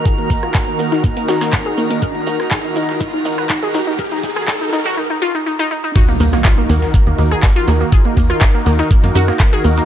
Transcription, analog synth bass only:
X:1
M:4/4
L:1/16
Q:1/4=122
K:Ebm
V:1 name="Analog synth bass" clef=bass
z2 E,, z3 E,, z2 G,, G,, z3 E,, z | z2 E,, z3 E,, z2 E,, E,, z3 E,, z | z2 E,, z3 E,, z8 z | z2 E,, z3 E,, z2 E,, E,, z3 E,, z |
z2 E,, z3 E,, z2 G,, G,, z3 E,, z |]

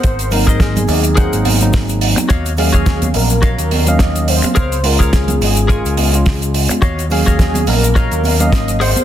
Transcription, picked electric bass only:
X:1
M:4/4
L:1/16
Q:"Swing 16ths" 1/4=106
K:Ebdor
V:1 name="Picked electric bass" clef=bass
A,,,3 A,,,3 E,,3 A,,,3 A,,,3 z | E,,3 E,,3 B,,,3 E,,3 E,,3 z | D,,3 D,,3 A,,,3 D,,3 D,,3 z | E,,3 E,,3 B,,,3 E,,3 A,,,3 z |]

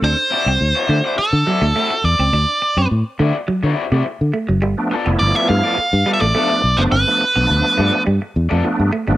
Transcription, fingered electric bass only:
X:1
M:4/4
L:1/16
Q:1/4=104
K:D
V:1 name="Fingered electric bass" clef=bass
D,, z2 =C,, D,, z D, z2 D, z D,, z2 E,, ^C,, | D,, z2 F,, A,, z D, z2 D, z =C, z D, z F,,, | G,,, z2 =F,,, G,,, z G,, z2 G,, z A,,, z2 B,,, ^F,,, | G,,, z2 B,,, D,, z G,, z G,, z E,, =F,, z G,, z ^G,,, |]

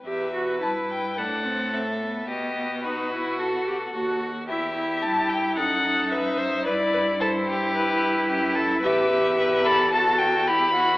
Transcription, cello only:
X:1
M:4/4
L:1/8
Q:1/4=109
K:Em
V:1 name="Cello" clef=bass
E,,2 G,,2 A,,4 | B,,6 ^D,,2 | E,,2 G,,2 F,,4 | G,,6 F,,2 |
E,,8 |]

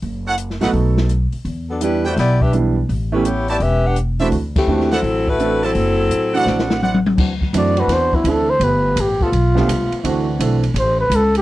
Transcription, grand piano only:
X:1
M:4/4
L:1/8
Q:"Swing" 1/4=168
K:Dmix
V:1 name="Grand piano"
z3 [F,A,B,_EA]3 z2 | z2 [E,G,B,DG] z3 [E,G,B,DE] z | z [E,A,B,^CG] z4 z [E,A,=CDF] | z2 [E,A,CDF] z3 [E,A,CDA] z |
z3 [E,A,CDF]3 z2 | z2 [E,A,CDF] z3 [E,A,CDE] z | z4 z [=F,A,B,DG] z2 | [E,A,CDF] z [E,A,CDA] z4 z |]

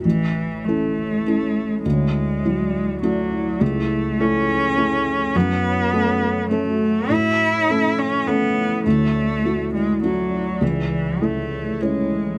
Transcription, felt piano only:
X:1
M:3/4
L:1/8
Q:1/4=102
K:A
V:1 name="Felt piano"
A,,,2 [CEA]2 [CEA]2 | D,,2 [F,EF]2 [A,EF]2 | C,,2 [A,EA]2 [A,EA]2 | F,,2 [A,CA]2 [A,CA]2 |
A,,2 [A,CA]2 [A,CA]2 | D,,2 [A,EF]2 [A,EF]2 | C,,2 [A,EA]2 [CEc]2 |]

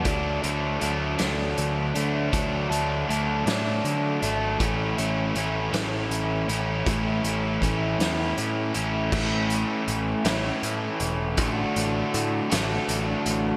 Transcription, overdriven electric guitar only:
X:1
M:6/8
L:1/8
Q:3/8=53
K:D
V:1 name="Overdriven electric guitar"
[D,F,A,D] [F,A,D] [D,F,A,D] [D,F,A,D]2 [F,A,D] | [D,F,A,D] [F,A,D] [D,F,A,D] [D,F,A,D]2 [F,A,D] | [A,,E,A,CE] [A,CE] [E,A,CE] [A,,E,A,CE]2 [A,CE] | [A,,E,A,CE] [A,CE] [E,A,CE] [A,,E,A,CE]2 [A,CE] |
[A,,E,A,CE]3 [A,,E,A,CE]3 | [A,,D,A,DF]3 [A,,D,A,DF]3 |]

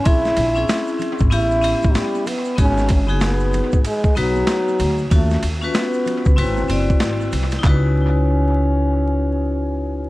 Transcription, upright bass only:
X:1
M:4/4
L:1/16
Q:"Swing 16ths" 1/4=95
K:C#m
V:1 name="Upright bass" clef=bass
^A,,,2 A,,,2 z3 G,,, =A,,,3 A,,, z4 | G,,,3 F,,,4 G,,, z2 B,,,2 z2 =D,,2 | D,,2 D,,2 z3 C,, G,,,2 F,,,2 G,,,2 ^B,,,2 | C,,16 |]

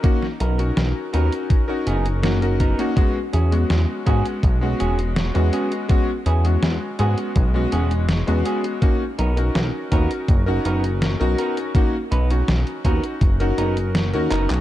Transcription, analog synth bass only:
X:1
M:4/4
L:1/16
Q:1/4=82
K:B
V:1 name="Analog synth bass" clef=bass
z2 B,,,2 B,,, z D,, z3 F,,,4- F,,, z | z2 E,,2 E,, z G,, z B,,,2 E,,,3 E,, z2 | z2 E,,2 E,, z G,, z B,,,2 E,,,3 E,, z2 | z2 B,,,2 B,,, z D,, z F,,,2 F,,,3 B,,, z2 |
z2 B,,,2 B,,, z D,, z F,,,2 F,,,3 D,, F,,, B,,, |]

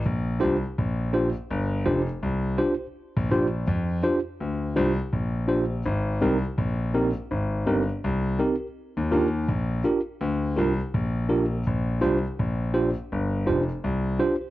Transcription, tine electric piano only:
X:1
M:4/4
L:1/16
Q:"Swing 16ths" 1/4=83
K:Bb
V:1 name="Tine electric piano"
z2 [DFGc] z3 [DFGc] z3 [DFGc] z3 [DFGc] [Gc] | z2 [DFGc] z3 [DFGc] z3 [DFGc] z3 [DFGc] [Gc] | z2 [CEGB] z3 [CEGB] z3 [CEGB] z3 [CEGB] [GB] | z2 [DFGB] z3 [DFGB] z3 [DFGB] z3 [DFGB] z |
z2 [DFGc] z3 [DFGc] z3 [DFGc] z3 [DFGc] [Gc] |]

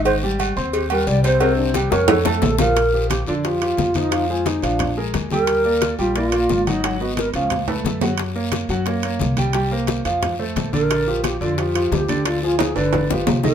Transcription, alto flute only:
X:1
M:4/4
L:1/8
Q:1/4=177
K:Bb
V:1 name="Alto flute"
c z3 G B d c | B D G B A3 B- | B2 G F F3 E- | E F E D2 z2 B- |
B3 F F3 E- | E _G B _D2 z3 | z8 | z6 z B- |
B2 G F F2 G2 | F F _A _c3 z B |]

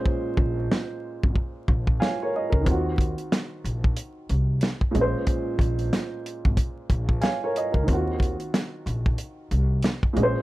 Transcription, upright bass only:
X:1
M:4/4
L:1/16
Q:"Swing 16ths" 1/4=92
K:Ebdor
V:1 name="Upright bass" clef=bass
z2 B,,,2 z3 A,,, z2 B,,,2 z3 D,, | E,,3 z3 B,,,2 z2 C,,2 z2 B,,, z | z2 B,,,2 z3 A,,, z2 B,,,2 z3 D,, | E,,3 z3 B,,,2 z2 C,,2 z2 B,,, z |]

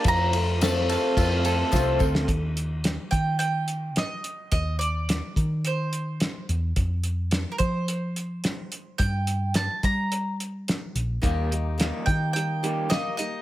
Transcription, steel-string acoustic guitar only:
X:1
M:4/4
L:1/8
Q:1/4=108
K:F
V:1 name="Steel-string acoustic guitar"
[F,,C,F,A,CA] [F,A,CA] [F,,C,F,A,CA]2 [F,A,CA] [F,A,CA] [F,,C,F,A,CA] [F,A,CA] | z8 | z8 | z8 |
z8 | [_E,B,_EG]2 [E,B,EG]3 [B,EG] [E,B,EG] [B,EG] |]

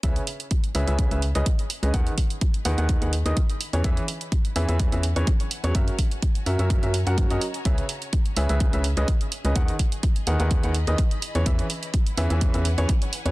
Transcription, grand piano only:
X:1
M:4/4
L:1/16
Q:"Swing 16ths" 1/4=126
K:C#dor
V:1 name="Grand piano"
[C,CGBe] z4 z [C,CGBe] [C,CGBe]2 [C,CGBe] z [C,CGBd] z3 [CGBd] | [D,DGBf] z4 z [D,DGBf] [D,DGBf]2 [D,DGBf] z [D,DGBd] z3 [E,CGBc] | [E,CGBe] z4 z [E,CGBe] [E,CGBe]2 [E,CGBe] z [E,CGBc] z3 [F,CGBc] | [F,CFAe] z4 z [F,CFAe] [F,CFAe]2 [F,CFAe] z [F,CFAf]2 [F,CFAd] z2 |
[C,CGBe] z4 z [C,CGBe] [C,CGBe]2 [C,CGBe] z [C,CGBd] z3 [CGBd] | [D,DGBf] z4 z [D,DGBf] [D,DGBf]2 [D,DGBf] z [D,DGBd] z3 [E,CGBc] | [E,CGBe] z4 z [E,CGBe] [E,CGBe]2 [E,CGBe] z [E,CGBc] z3 [F,CGBc] |]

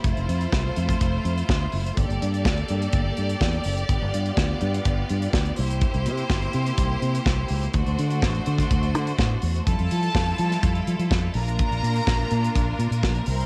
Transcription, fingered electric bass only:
X:1
M:4/4
L:1/16
Q:1/4=125
K:Gdor
V:1 name="Fingered electric bass" clef=bass
F,,, F,,, F,,2 C,,2 F,,2 F,,,2 F,,2 D,,2 ^F,,,2 | G,,, G,,, G,,2 D,,2 G,,2 G,,,2 G,,2 E,,2 ^F,,,2 | G,,, G,,, G,,2 D,,2 G,,2 G,,,2 G,,2 D,,2 C,,2- | C,, C,, C,2 G,,,2 C,2 C,,2 C,2 C,,2 ^C,,2 |
D,, D,, D,2 A,,,2 D,2 D,,2 D,2 A,,2 E,,2 | F,, F,, F,2 F,,2 F,2 F,,2 F, F, F,,2 B,,,2- | B,,, B,,, B,,2 B,,,2 B,,2 B,,,2 B,, B,, B,,,2 C,,2 |]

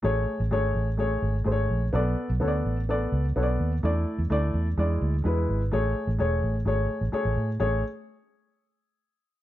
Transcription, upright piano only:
X:1
M:4/4
L:1/16
Q:1/4=127
K:A
V:1 name="Upright piano"
[A,Gc]3 z [A,Gc]3 z [A,Gc]3 z [A,G=c^c]3 z | [B,Ad]3 z [B,Acd]3 z [B,Ad]3 z [B,Acd]3 z | [A,Ed]3 z [A,Ed]3 z [G,Ed]3 z [G,EB]3 z | [A,Gc]3 z [A,Gc]3 z [A,Gc]3 z [A,Gc]3 z |
[A,Gc]2 z12 z2 |]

